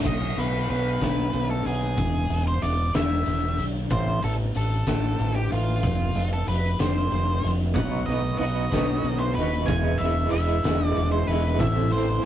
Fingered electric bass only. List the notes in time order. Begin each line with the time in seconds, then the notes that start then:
0.05 B1
0.37 B1
0.70 B1
1.02 B1
1.34 B1
1.66 B1
1.98 E1
2.30 E1
2.61 E1
2.95 E1
3.26 E1
3.59 B1
3.91 A1
4.23 A1
4.55 A1
4.87 A1
5.19 A1
5.52 A1
5.83 F1
6.15 F1
6.47 F1
6.79 F1
7.11 F1
7.44 F1
7.76 B1
8.08 B1
8.40 B1
8.72 B1
9.04 B1
9.36 D#1
9.68 E1
10.00 E1
10.31 E1
10.63 E1
10.96 E1
11.27 E1
11.60 A1
11.92 A1